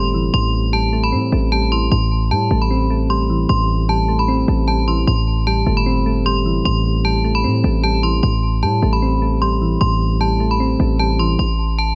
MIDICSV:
0, 0, Header, 1, 4, 480
1, 0, Start_track
1, 0, Key_signature, 0, "minor"
1, 0, Tempo, 394737
1, 410, Time_signature, 4, 2, 24, 8
1, 14531, End_track
2, 0, Start_track
2, 0, Title_t, "Synth bell"
2, 0, Program_c, 0, 98
2, 0, Note_on_c, 0, 84, 97
2, 383, Note_off_c, 0, 84, 0
2, 410, Note_on_c, 0, 84, 118
2, 861, Note_off_c, 0, 84, 0
2, 889, Note_on_c, 0, 81, 92
2, 1234, Note_off_c, 0, 81, 0
2, 1259, Note_on_c, 0, 83, 86
2, 1815, Note_off_c, 0, 83, 0
2, 1848, Note_on_c, 0, 81, 89
2, 2047, Note_off_c, 0, 81, 0
2, 2090, Note_on_c, 0, 84, 86
2, 2288, Note_off_c, 0, 84, 0
2, 2329, Note_on_c, 0, 84, 93
2, 2780, Note_off_c, 0, 84, 0
2, 2812, Note_on_c, 0, 81, 80
2, 3156, Note_off_c, 0, 81, 0
2, 3181, Note_on_c, 0, 83, 79
2, 3736, Note_off_c, 0, 83, 0
2, 3769, Note_on_c, 0, 84, 93
2, 4220, Note_off_c, 0, 84, 0
2, 4247, Note_on_c, 0, 84, 115
2, 4699, Note_off_c, 0, 84, 0
2, 4732, Note_on_c, 0, 81, 101
2, 5076, Note_off_c, 0, 81, 0
2, 5096, Note_on_c, 0, 83, 86
2, 5654, Note_off_c, 0, 83, 0
2, 5687, Note_on_c, 0, 81, 85
2, 5886, Note_off_c, 0, 81, 0
2, 5931, Note_on_c, 0, 84, 81
2, 6128, Note_off_c, 0, 84, 0
2, 6171, Note_on_c, 0, 84, 93
2, 6621, Note_off_c, 0, 84, 0
2, 6650, Note_on_c, 0, 81, 84
2, 6995, Note_off_c, 0, 81, 0
2, 7016, Note_on_c, 0, 83, 78
2, 7573, Note_off_c, 0, 83, 0
2, 7611, Note_on_c, 0, 84, 92
2, 8061, Note_off_c, 0, 84, 0
2, 8091, Note_on_c, 0, 84, 116
2, 8541, Note_off_c, 0, 84, 0
2, 8569, Note_on_c, 0, 81, 94
2, 8914, Note_off_c, 0, 81, 0
2, 8936, Note_on_c, 0, 83, 92
2, 9494, Note_off_c, 0, 83, 0
2, 9528, Note_on_c, 0, 81, 88
2, 9727, Note_off_c, 0, 81, 0
2, 9768, Note_on_c, 0, 84, 88
2, 9967, Note_off_c, 0, 84, 0
2, 10007, Note_on_c, 0, 84, 91
2, 10460, Note_off_c, 0, 84, 0
2, 10491, Note_on_c, 0, 81, 85
2, 10835, Note_off_c, 0, 81, 0
2, 10856, Note_on_c, 0, 83, 81
2, 11414, Note_off_c, 0, 83, 0
2, 11450, Note_on_c, 0, 84, 93
2, 11901, Note_off_c, 0, 84, 0
2, 11926, Note_on_c, 0, 84, 119
2, 12379, Note_off_c, 0, 84, 0
2, 12411, Note_on_c, 0, 81, 96
2, 12755, Note_off_c, 0, 81, 0
2, 12779, Note_on_c, 0, 83, 85
2, 13335, Note_off_c, 0, 83, 0
2, 13369, Note_on_c, 0, 81, 87
2, 13568, Note_off_c, 0, 81, 0
2, 13612, Note_on_c, 0, 84, 86
2, 13809, Note_off_c, 0, 84, 0
2, 13852, Note_on_c, 0, 84, 89
2, 14302, Note_off_c, 0, 84, 0
2, 14331, Note_on_c, 0, 81, 81
2, 14531, Note_off_c, 0, 81, 0
2, 14531, End_track
3, 0, Start_track
3, 0, Title_t, "Synth keys"
3, 0, Program_c, 1, 88
3, 0, Control_c, 1, 64, 127
3, 0, Note_on_c, 1, 45, 99
3, 0, Note_on_c, 1, 55, 98
3, 0, Note_on_c, 1, 57, 89
3, 0, Note_on_c, 1, 60, 97
3, 172, Note_on_c, 1, 52, 80
3, 410, Note_off_c, 1, 45, 0
3, 410, Note_on_c, 1, 45, 94
3, 649, Note_off_c, 1, 60, 0
3, 873, Note_off_c, 1, 55, 0
3, 888, Note_on_c, 1, 55, 87
3, 889, Note_off_c, 1, 57, 0
3, 1128, Note_on_c, 1, 57, 87
3, 1366, Note_on_c, 1, 60, 96
3, 1371, Note_off_c, 1, 52, 0
3, 1592, Note_off_c, 1, 57, 0
3, 1607, Note_on_c, 1, 57, 90
3, 1609, Note_off_c, 1, 45, 0
3, 1833, Note_off_c, 1, 55, 0
3, 1848, Note_on_c, 1, 55, 90
3, 2090, Note_on_c, 1, 52, 79
3, 2328, Note_off_c, 1, 57, 0
3, 2328, Note_off_c, 1, 60, 0
3, 2329, Note_off_c, 1, 55, 0
3, 2329, Note_on_c, 1, 45, 100
3, 2330, Note_off_c, 1, 52, 0
3, 2344, Control_c, 1, 64, 0
3, 2570, Control_c, 1, 64, 127
3, 2809, Note_on_c, 1, 55, 93
3, 3051, Note_on_c, 1, 57, 88
3, 3290, Note_on_c, 1, 60, 96
3, 3516, Note_off_c, 1, 57, 0
3, 3529, Note_off_c, 1, 45, 0
3, 3530, Note_on_c, 1, 57, 86
3, 3755, Note_off_c, 1, 55, 0
3, 3770, Note_on_c, 1, 55, 89
3, 4011, Note_on_c, 1, 52, 82
3, 4246, Note_on_c, 1, 45, 94
3, 4490, Note_off_c, 1, 60, 0
3, 4713, Note_off_c, 1, 55, 0
3, 4727, Note_on_c, 1, 55, 91
3, 4730, Note_off_c, 1, 57, 0
3, 4967, Note_on_c, 1, 57, 84
3, 5208, Note_on_c, 1, 60, 104
3, 5210, Note_off_c, 1, 52, 0
3, 5434, Note_off_c, 1, 57, 0
3, 5448, Note_off_c, 1, 45, 0
3, 5448, Note_on_c, 1, 57, 79
3, 5674, Note_off_c, 1, 55, 0
3, 5688, Note_on_c, 1, 55, 84
3, 5932, Note_on_c, 1, 52, 87
3, 6168, Note_on_c, 1, 45, 99
3, 6169, Note_off_c, 1, 55, 0
3, 6169, Note_off_c, 1, 57, 0
3, 6169, Note_off_c, 1, 60, 0
3, 6171, Note_off_c, 1, 52, 0
3, 6185, Control_c, 1, 64, 0
3, 6387, Control_c, 1, 64, 127
3, 6650, Note_on_c, 1, 55, 93
3, 6890, Note_on_c, 1, 57, 84
3, 7128, Note_on_c, 1, 60, 95
3, 7354, Note_off_c, 1, 57, 0
3, 7368, Note_off_c, 1, 45, 0
3, 7369, Note_on_c, 1, 57, 88
3, 7592, Note_off_c, 1, 55, 0
3, 7606, Note_on_c, 1, 55, 95
3, 7851, Note_on_c, 1, 52, 80
3, 8088, Note_on_c, 1, 45, 94
3, 8329, Note_off_c, 1, 60, 0
3, 8552, Note_off_c, 1, 55, 0
3, 8567, Note_on_c, 1, 55, 89
3, 8569, Note_off_c, 1, 57, 0
3, 8808, Note_on_c, 1, 57, 87
3, 9048, Note_on_c, 1, 60, 93
3, 9050, Note_off_c, 1, 52, 0
3, 9271, Note_off_c, 1, 57, 0
3, 9286, Note_on_c, 1, 57, 90
3, 9289, Note_off_c, 1, 45, 0
3, 9512, Note_off_c, 1, 55, 0
3, 9527, Note_on_c, 1, 55, 89
3, 9772, Note_on_c, 1, 52, 81
3, 10008, Note_off_c, 1, 55, 0
3, 10008, Note_off_c, 1, 57, 0
3, 10008, Note_on_c, 1, 45, 98
3, 10009, Note_off_c, 1, 60, 0
3, 10011, Note_off_c, 1, 52, 0
3, 10026, Control_c, 1, 64, 0
3, 10254, Control_c, 1, 64, 127
3, 10491, Note_on_c, 1, 55, 92
3, 10733, Note_on_c, 1, 57, 89
3, 10972, Note_on_c, 1, 60, 95
3, 11195, Note_off_c, 1, 57, 0
3, 11209, Note_off_c, 1, 45, 0
3, 11210, Note_on_c, 1, 57, 83
3, 11437, Note_off_c, 1, 55, 0
3, 11451, Note_on_c, 1, 55, 91
3, 11692, Note_on_c, 1, 52, 80
3, 11929, Note_on_c, 1, 45, 97
3, 12171, Note_off_c, 1, 60, 0
3, 12395, Note_off_c, 1, 55, 0
3, 12409, Note_on_c, 1, 55, 96
3, 12410, Note_off_c, 1, 57, 0
3, 12649, Note_on_c, 1, 57, 85
3, 12891, Note_off_c, 1, 52, 0
3, 12891, Note_on_c, 1, 60, 103
3, 13116, Note_off_c, 1, 57, 0
3, 13129, Note_off_c, 1, 45, 0
3, 13131, Note_on_c, 1, 57, 79
3, 13357, Note_off_c, 1, 55, 0
3, 13371, Note_on_c, 1, 55, 87
3, 13613, Note_on_c, 1, 52, 84
3, 13850, Note_off_c, 1, 55, 0
3, 13850, Note_off_c, 1, 57, 0
3, 13850, Note_off_c, 1, 60, 0
3, 13851, Note_off_c, 1, 52, 0
3, 13866, Control_c, 1, 64, 0
3, 14083, Control_c, 1, 64, 127
3, 14531, End_track
4, 0, Start_track
4, 0, Title_t, "808-style bass"
4, 0, Program_c, 2, 38
4, 0, Note_on_c, 2, 31, 108
4, 362, Note_off_c, 2, 31, 0
4, 409, Note_on_c, 2, 33, 106
4, 1369, Note_on_c, 2, 45, 99
4, 1388, Note_off_c, 2, 33, 0
4, 1597, Note_off_c, 2, 45, 0
4, 1609, Note_on_c, 2, 33, 111
4, 2301, Note_off_c, 2, 33, 0
4, 2329, Note_on_c, 2, 33, 109
4, 2808, Note_on_c, 2, 45, 104
4, 2827, Note_off_c, 2, 33, 0
4, 3037, Note_off_c, 2, 45, 0
4, 3049, Note_on_c, 2, 33, 106
4, 4201, Note_off_c, 2, 33, 0
4, 4249, Note_on_c, 2, 33, 115
4, 5401, Note_off_c, 2, 33, 0
4, 5449, Note_on_c, 2, 33, 107
4, 6140, Note_off_c, 2, 33, 0
4, 6169, Note_on_c, 2, 33, 114
4, 6861, Note_off_c, 2, 33, 0
4, 6889, Note_on_c, 2, 31, 107
4, 8041, Note_off_c, 2, 31, 0
4, 8090, Note_on_c, 2, 33, 109
4, 9051, Note_on_c, 2, 45, 100
4, 9069, Note_off_c, 2, 33, 0
4, 9278, Note_off_c, 2, 45, 0
4, 9291, Note_on_c, 2, 33, 110
4, 9982, Note_off_c, 2, 33, 0
4, 10010, Note_on_c, 2, 33, 111
4, 10491, Note_on_c, 2, 45, 104
4, 10509, Note_off_c, 2, 33, 0
4, 10718, Note_off_c, 2, 45, 0
4, 10730, Note_on_c, 2, 33, 108
4, 11882, Note_off_c, 2, 33, 0
4, 11930, Note_on_c, 2, 33, 110
4, 13082, Note_off_c, 2, 33, 0
4, 13129, Note_on_c, 2, 33, 108
4, 13820, Note_off_c, 2, 33, 0
4, 13850, Note_on_c, 2, 33, 110
4, 14531, Note_off_c, 2, 33, 0
4, 14531, End_track
0, 0, End_of_file